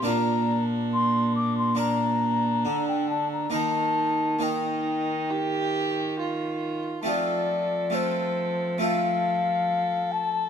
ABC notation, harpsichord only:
X:1
M:4/4
L:1/8
Q:1/4=69
K:Fmix
V:1 name="Harpsichord"
[B,DB]4 [B,DB]4 | [B,EB]2 [B,EB]6 | [A,CF]2 [A,CF]2 [A,CF]4 |]
V:2 name="Harpsichord" clef=bass
B,,6 D,2 | E,8 | F,8 |]